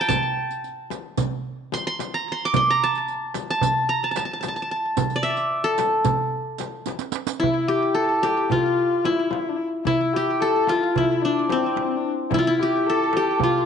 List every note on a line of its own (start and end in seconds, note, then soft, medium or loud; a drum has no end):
0.00 0.20 F5 medium
0.00 0.84 G5 medium
0.09 1.06 A5 medium
0.09 riq medium
0.09 darbuka dum medium
0.09 frame drum medium
0.23 darbuka ka soft
0.37 darbuka ka soft
0.51 riq soft
0.64 riq soft
0.90 riq soft
0.90 darbuka tek medium
0.90 frame drum medium
1.17 riq medium
1.17 frame drum medium
1.17 darbuka dum medium
1.32 darbuka ka soft
1.72 1.86 C6 medium
1.72 riq soft
1.72 darbuka tek medium
1.72 frame drum medium
1.87 2.32 C6 medium
1.99 riq soft
1.99 darbuka tek medium
1.99 frame drum medium
2.14 2.70 A#5 medium
2.32 2.56 C6 medium
2.45 3.10 D6 medium
2.54 3.26 C6 medium
2.54 riq medium
2.54 darbuka dum medium
2.54 frame drum medium
2.68 2.90 A#5 medium
2.68 darbuka ka soft
2.81 3.50 A5 medium
2.81 darbuka ka soft
2.95 riq soft
3.08 riq soft
3.34 riq soft
3.34 darbuka tek medium
3.34 frame drum medium
3.50 3.95 A5 medium
3.61 riq medium
3.61 darbuka dum medium
3.61 frame drum medium
3.76 darbuka ka soft
3.89 4.10 A#5 medium
4.04 4.11 A5 medium
4.11 4.17 A5 soft
4.16 4.25 A5 medium
4.16 riq soft
4.16 darbuka tek medium
4.16 frame drum medium
4.25 4.33 A5 soft
4.33 4.40 A5 soft
4.41 4.48 A5 soft
4.41 riq medium
4.41 darbuka tek medium
4.41 frame drum medium
4.48 4.56 A5 soft
4.56 4.62 A5 soft
4.62 4.71 A5 medium
4.71 5.49 A5 medium
4.97 riq medium
4.97 darbuka dum medium
4.97 frame drum medium
5.10 riq soft
5.10 darbuka ka soft
5.16 6.14 D5 medium
5.23 6.15 E5 medium
5.23 riq soft
5.23 darbuka ka soft
5.37 riq soft
5.37 darbuka ka soft
5.51 darbuka ka soft
5.64 7.13 A4 medium
5.78 riq soft
5.78 darbuka tek medium
5.78 frame drum medium
6.05 riq medium
6.05 frame drum medium
6.05 darbuka dum medium
6.19 darbuka ka soft
6.58 riq medium
6.58 darbuka tek medium
6.58 frame drum medium
6.86 riq medium
6.86 darbuka tek soft
6.86 frame drum medium
6.99 riq medium
6.99 darbuka ka medium
7.12 riq medium
7.12 darbuka tek medium
7.27 riq medium
7.27 darbuka ka medium
7.40 8.58 E4 medium
7.40 7.69 E4 medium
7.40 frame drum medium
7.40 darbuka dum medium
7.68 7.98 G4 medium
7.68 8.23 G4 medium
7.95 9.12 A4 medium
7.95 8.26 A4 medium
7.95 darbuka ka soft
8.23 9.49 G4 medium
8.23 8.50 G4 medium
8.23 darbuka tek medium
8.23 frame drum medium
8.50 9.06 F4 medium
8.50 9.11 F4 medium
8.50 frame drum medium
8.50 darbuka dum medium
9.05 9.32 E4 medium
9.05 9.86 E4 medium
9.05 darbuka tek medium
9.05 frame drum medium
9.31 9.40 F4 medium
9.31 darbuka tek medium
9.31 frame drum medium
9.39 9.50 E4 medium
9.49 9.58 D4 medium
9.56 9.66 E4 medium
9.85 10.15 E4 medium
9.85 10.75 E4 medium
9.85 frame drum medium
9.85 darbuka dum medium
10.14 10.42 G4 medium
10.14 11.42 G4 medium
10.40 10.69 A4 medium
10.40 11.59 A4 medium
10.40 darbuka ka soft
10.67 10.76 F4 medium
10.67 11.04 F4 medium
10.67 darbuka tek medium
10.67 frame drum medium
10.75 10.83 E4 medium
10.81 10.94 F4 medium
10.95 11.23 E4 medium
10.95 12.34 E4 medium
10.95 frame drum medium
10.95 darbuka dum medium
11.22 11.48 D4 medium
11.22 12.74 D4 medium
11.49 11.98 C4 medium
11.49 13.12 C4 medium
11.49 darbuka tek medium
11.49 frame drum medium
11.76 darbuka tek medium
11.76 frame drum medium
11.96 12.10 D4 medium
12.30 12.43 E4 medium
12.30 frame drum medium
12.30 darbuka dum medium
12.34 12.45 E4 medium
12.39 12.53 F4 medium
12.45 12.60 E4 medium
12.45 13.50 E4 medium
12.59 12.88 G4 medium
12.59 13.16 G4 medium
12.86 13.43 A4 medium
12.86 13.65 A4 medium
12.86 darbuka ka soft
13.13 13.65 G4 medium
13.13 darbuka tek medium
13.13 frame drum medium
13.39 13.65 F4 medium
13.39 frame drum medium
13.39 darbuka dum medium
13.44 13.65 F4 medium